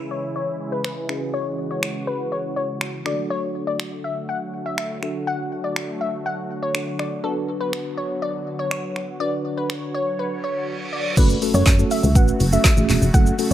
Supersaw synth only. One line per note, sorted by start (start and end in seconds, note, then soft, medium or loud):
0.00 3.02 C#3 medium
0.00 3.02 E3 medium
0.00 3.02 G#3 medium
0.00 1.07 E4 medium
1.09 3.04 F#4 medium
3.06 11.13 D3 medium
3.06 11.13 F#3 medium
3.06 5.00 A3 medium
3.06 11.13 F#4 medium
5.03 7.22 A3 medium
7.24 9.19 B3 medium
9.20 11.15 C#5 medium
11.17 13.54 C#3 medium
11.17 13.54 F#3 medium
11.17 13.54 A3 medium
11.17 13.54 F#4 medium